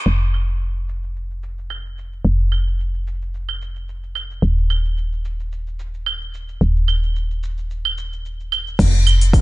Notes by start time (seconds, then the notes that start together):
0.06 F1, cabasa
0.22 cabasa
0.34 cabasa, claves
0.49 cabasa
0.62 cabasa
0.76 cabasa
0.89 cabasa
1.03 cabasa
1.16 cabasa
1.31 cabasa
1.43 cabasa
1.58 cabasa
1.70 cabasa, claves
1.85 cabasa
1.98 cabasa
2.12 cabasa
2.25 F1, cabasa
2.40 cabasa
2.52 cabasa, claves
2.67 cabasa
2.80 cabasa
2.95 cabasa
3.07 cabasa
3.22 cabasa
3.34 cabasa
3.49 cabasa, claves
3.61 cabasa
3.76 cabasa
3.89 cabasa
4.03 cabasa
4.15 cabasa, claves
4.31 cabasa
4.42 D#1, cabasa
4.58 cabasa
4.70 cabasa, claves
4.85 cabasa
4.98 cabasa
5.12 cabasa
5.25 cabasa
5.40 cabasa
5.52 cabasa
5.67 cabasa
5.79 cabasa
5.94 cabasa
6.06 cabasa, claves
6.22 cabasa
6.34 cabasa
6.49 cabasa
6.61 D#1, cabasa
6.76 cabasa
6.88 cabasa, claves
7.03 cabasa
7.16 cabasa
7.31 cabasa
7.43 cabasa
7.58 cabasa
7.71 cabasa
7.85 cabasa, claves
7.98 cabasa
8.13 cabasa
8.25 cabasa
8.40 cabasa
8.52 cabasa, claves
8.67 cabasa
8.79 F1, kick, open hi-hat, crash, cabasa
8.95 cabasa
9.07 cabasa, claves
9.21 open hi-hat, cabasa
9.33 kick, open hi-hat, cabasa